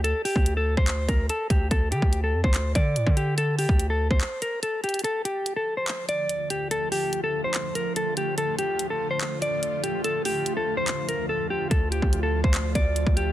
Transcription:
<<
  \new Staff \with { instrumentName = "Clean electric guitar" } { \time 4/4 \key d \minor \tempo 4 = 144 a'8 g'8. a'8 c''8. bes'8 a'8 g'8 | a'8 g'8. a'8 c''8. d''4 g'8 | a'8 g'8. a'8 c''8. bes'8 a'8 g'8 | a'8 g'8. a'8 c''8. d''4 g'8 |
a'8 g'8. a'8 c''8. bes'8 a'8 g'8 | a'8 g'8. a'8 c''8. d''4 g'8 | a'8 g'8. a'8 c''8. bes'8 a'8 g'8 | a'8 g'8. a'8 c''8. d''4 g'8 | }
  \new Staff \with { instrumentName = "Ambient pad" } { \clef bass \time 4/4 \key d \minor r1 | r1 | r1 | <d f a f'>1~ |
<d f a f'>1~ | <d f a f'>1~ | <d f a f'>1~ | <d f a f'>1 | }
  \new Staff \with { instrumentName = "808-style bass" } { \clef bass \time 4/4 \key d \minor d,16 r8 d,4 d,8. d,8 r8 d,8 | d,8 d16 d,8. f,16 d,8. d8 a,16 d8.~ | d8. d,4 d,16 r2 | r1 |
r1 | r1 | r1 | d,8. d,4 d,8. d,8. d,8. | }
  \new DrumStaff \with { instrumentName = "Drums" } \drummode { \time 4/4 hh8 hho16 bd16 hh8. bd16 <hc hh>8 <hh bd>8 hh8 <hh bd>8 | <hh bd>8 hh16 bd16 hh8. bd16 <hc hh>8 <hh bd>8 hh16 bd16 hh8 | hh8 hho16 bd16 hh8. bd16 <hc hh>8 hh8 hh8 hh32 hh32 hh32 hh32 | hh8 hh8 hh4 <hc hh>8 hh8 hh8 hh8 |
hh8 hho8 hh4 <hc hh>8 hh8 hh8 hh8 | hh8 hh8 hh4 <hc hh>8 hh8 hh8 hh8 | hh8 hho8 hh4 <hc hh>8 hh8 r4 | <hh bd>8 hh16 bd16 hh8. bd16 <hc hh>8 <hh bd>8 hh16 bd16 hh8 | }
>>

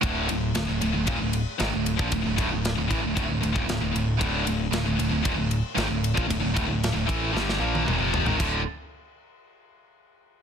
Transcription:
<<
  \new Staff \with { instrumentName = "Distorted electric guitar" } { \clef bass \time 4/4 \key d \minor \tempo 4 = 115 <d, a, d>8 <d, a,>8 <d, a,>16 <d, a,>16 <d, a,>16 <d, a,>16 <ees, bes,>16 <d, a,>8 r16 <gis, ees>16 <d, a,>8 <bes, f>16 | <d, a,>16 <d, a,>16 <d, a,>16 <d, a,>8 <d, a,>16 <a, e>16 <d, a,>16 <d, a,>16 <d, a,>16 <d, a,>16 <ees, bes,>16 <d, a,>16 <d, a,>16 <d, a,>8 | <d, a, d>8 <d, a,>8 <d, a,>16 <d, a,>16 <d, a,>16 <d, a,>16 <ees, bes,>16 <d, a,>8 r16 <gis, ees>16 <d, a,>8 <bes, f>16 | <d, a,>16 <d, a,>16 <d, a,>16 <d, a,>8 <d, a,>16 <a, e a>8 <g, d g>8 <bes, f bes>8 <ees, bes,>16 <f, c f>8 <gis, ees>16 |
<d, a, d>8 r2. r8 | }
  \new Staff \with { instrumentName = "Distorted electric guitar" } { \clef bass \time 4/4 \key d \minor <d, a, d>8 <d, a,>8 <d, a,>16 <d, a,>16 <d, a,>16 <d, a,>16 <ees, bes,>16 <d, a,>8 r16 <gis, ees>16 <d, a,>8 <bes, f>16 | <d, a,>16 <d, a,>16 <d, a,>16 <d, a,>8 <d, a,>16 <a, e>16 <d, a,>16 <d, a,>16 <d, a,>16 <d, a,>16 <ees, bes,>16 <d, a,>16 <d, a,>16 <d, a,>8 | <d, a, d>8 <d, a,>8 <d, a,>16 <d, a,>16 <d, a,>16 <d, a,>16 <ees, bes,>16 <d, a,>8 r16 <gis, ees>16 <d, a,>8 <bes, f>16 | <d, a,>16 <d, a,>16 <d, a,>16 <d, a,>8 <d, a,>16 <a, e a>8 <g, d g>8 <bes, f bes>8 <ees, bes,>16 <f, c f>8 <gis, ees>16 |
<d, a, d>8 r2. r8 | }
  \new Staff \with { instrumentName = "Picked electric bass" } { \clef bass \time 4/4 \key d \minor d,,8 d,,8 d,,16 d,,16 d,,16 d,,16 ees,,16 d,,8 r16 gis,,16 d,,8 bes,,16 | d,,16 d,,16 d,,16 d,,8 d,,16 a,,16 d,,16 d,,16 d,,16 d,,16 ees,,16 d,,16 d,,16 d,,8 | d,,8 d,,8 d,,16 d,,16 d,,16 d,,16 ees,,16 d,,8 r16 gis,,16 d,,8 bes,,16 | d,,16 d,,16 d,,16 d,,8 d,,16 a,,8 g,,8 bes,,8 ees,,16 f,,8 gis,,16 |
d,,8 r2. r8 | }
  \new DrumStaff \with { instrumentName = "Drums" } \drummode { \time 4/4 <bd cymr>8 cymr8 <cymr sn>8 cymr8 <bd cymr>8 cymr8 <cymr sn>8 cymr16 bd16 | <bd cymr>8 <bd cymr>8 <cymr sn>8 <bd cymr>8 <bd cymr>8 cymr16 bd16 <cymr sn>8 cymr8 | <bd cymr>8 cymr8 <cymr sn>8 cymr8 <bd cymr>8 cymr8 <cymr sn>8 cymr16 bd16 | <bd cymr>8 <bd cymr>8 <cymr sn>8 <bd cymr>8 sn16 sn8 tommh16 toml8 tomfh16 tomfh16 |
<cymc bd>4 r4 r4 r4 | }
>>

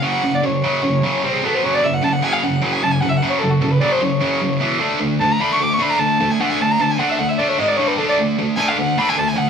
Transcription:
<<
  \new Staff \with { instrumentName = "Fiddle" } { \time 4/4 \key fis \minor \tempo 4 = 151 fis''8. d''16 cis''2 r16 gis'16 a'16 bis'16 | cis''16 d''16 e''16 fis''16 a''16 fis''16 gis''16 eis''16 fis''8. gis''16 a''16 gis''16 fis''16 e''16 | fis''16 cis''16 a'16 fis'16 a'16 b'16 d''16 bis'16 cis''4. r8 | r4 a''16 ais''16 b''16 cis'''16 d'''16 cis'''16 b''16 ais''16 a''8. gis''16 |
fis''16 gis''16 a''16 ais''16 a''16 gis''16 fis''16 e''16 fis''16 e''16 d''16 cis''16 dis''16 d''16 cis''16 b'16 | a'16 d''16 r4 gis''16 eis''16 fis''8 b''16 gis''16 a''16 gis''16 fis''16 r16 | }
  \new Staff \with { instrumentName = "Distorted electric guitar" } { \clef bass \time 4/4 \key fis \minor <fis, cis fis>8 <fis, cis>8 <fis, cis>8 <fis, cis fis>8 <fis, cis>8 <fis, cis fis>8 <c g c'>8 <b, fis b>8 | <fis, cis fis>8 <fis, cis>8 <fis, cis>8 <fis, cis fis>8 <fis, cis>8 <fis, cis fis>8 <fis, cis>8 <fis, cis>8 | <fis, cis fis>8 <fis, cis>8 <fis, cis>8 <fis, cis fis>8 <fis, cis>8 <fis, cis fis>8 <fis, cis>8 <e, b, e>8 | <d a d'>8 <d a>8 <d a>8 <d a d'>8 <d a>8 <d a d'>8 <d a>8 <d a>8 |
<d a d'>8 <d a>8 <d a>8 <d a d'>8 <d a>8 <d a d'>8 <gis, dis gis>8 <g, d g>8 | <d a d'>8 <d a>8 <d a>8 <d a d'>8 <d a>8 <d a d'>8 <d a>8 <d a>8 | }
>>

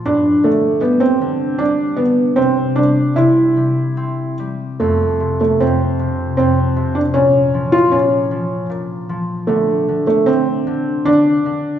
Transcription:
<<
  \new Staff \with { instrumentName = "Felt piano" } { \time 3/4 \key bes \lydian \tempo 4 = 76 d'8 a8 b16 c'8. d'8 b8 | c'8 d'8 e'4. r8 | a8. a16 c'4 c'8. d'16 | des'8. f'16 des'4 r4 |
a8. a16 c'4 d'4 | }
  \new Staff \with { instrumentName = "Harp" } { \clef bass \time 3/4 \key bes \lydian g,8 d8 g8 d8 g8 d8 | c8 g8 c8 g8 c'8 g8 | f,8 c8 f,8 c8 f,8 c8 | bes,8 f8 bes,8 f8 bes,8 f8 |
d8 d8 d8 d8 d8 d8 | }
>>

